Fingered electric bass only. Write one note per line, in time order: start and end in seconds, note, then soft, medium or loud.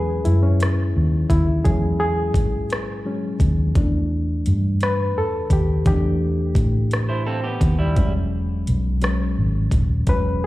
0.00 0.21 E2 medium
0.26 0.92 F#2 medium
0.97 1.27 D#2 medium
1.30 1.62 D#2 medium
1.66 2.35 E2 medium
2.35 3.36 G#2 medium
3.41 3.72 D#2 medium
3.76 4.42 E2 loud
4.47 5.17 G2 medium
5.17 5.48 E2 medium
5.51 5.83 D#2 medium
5.87 6.53 E2 loud
6.56 7.57 A2 medium
7.62 7.93 D#2 medium
7.97 8.63 E1 medium
8.68 9.34 B1 medium
9.38 9.69 G#1 medium
9.72 10.04 D#1 medium
10.08 10.46 E1 loud